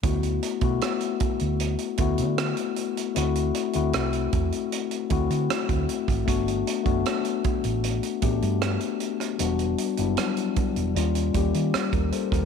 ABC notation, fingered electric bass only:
X:1
M:4/4
L:1/16
Q:1/4=77
K:D
V:1 name="Fingered electric bass" clef=bass
D,,2 z B,,, z3 D,,2 z D,, D,2 z3 | D,,2 z D,, =C,,2 E,, z3 D,, D, z D,, z ^G,,, | G,,,2 z F,,, z3 A,,,2 z A,,, G,,2 z3 | E,,,2 z F,,, z3 E,,, _E,,2 E,, _E, z E,, z E,, |]